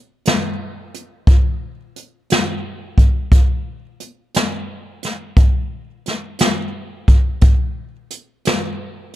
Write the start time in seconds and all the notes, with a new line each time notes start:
0.25 snare, closed hi-hat
0.94 closed hi-hat
1.27 kick, closed hi-hat
1.96 closed hi-hat
2.30 snare, closed hi-hat
2.98 kick, closed hi-hat
3.32 kick, closed hi-hat
4.00 closed hi-hat
4.34 snare, closed hi-hat
5.03 snare, closed hi-hat
5.37 kick, closed hi-hat
6.06 snare, closed hi-hat
6.39 snare, closed hi-hat
7.08 kick, closed hi-hat
7.41 kick, closed hi-hat
8.10 closed hi-hat
8.45 snare, closed hi-hat